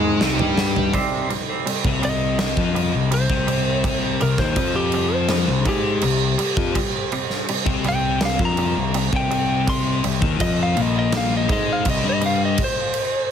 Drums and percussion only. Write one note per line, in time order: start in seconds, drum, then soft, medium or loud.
0.21 snare loud
0.39 floor tom medium
0.57 snare loud
0.76 floor tom medium
0.94 kick medium
0.94 crash medium
1.30 crash medium
1.67 crash medium
1.85 kick loud
2.03 crash medium
2.39 snare loud
2.39 crash medium
2.57 kick medium
2.76 crash soft
3.12 crash medium
3.30 kick medium
3.48 crash medium
3.84 kick medium
3.84 crash medium
4.21 crash medium
4.38 kick medium
4.38 snare soft
4.56 kick loud
4.56 crash medium
4.92 crash medium
5.28 snare loud
5.28 crash medium
5.65 kick loud
5.65 crash medium
6.02 crash medium
6.39 crash medium
6.57 kick loud
6.75 kick medium
6.75 crash medium
7.12 crash soft
7.30 snare soft
7.48 crash medium
7.66 kick loud
7.84 crash soft
8.21 snare loud
8.21 crash medium
8.39 kick medium
8.57 crash soft
8.94 crash medium
9.13 kick loud
9.31 crash medium
9.67 kick medium
9.67 crash medium
10.04 crash soft
10.22 kick loud
10.40 kick loud
10.40 crash medium
10.77 crash soft
11.12 snare loud
11.12 crash medium
11.49 kick loud
11.49 crash medium
11.85 kick loud
11.85 crash medium
12.21 crash medium
12.58 kick medium
12.58 crash medium
12.94 crash medium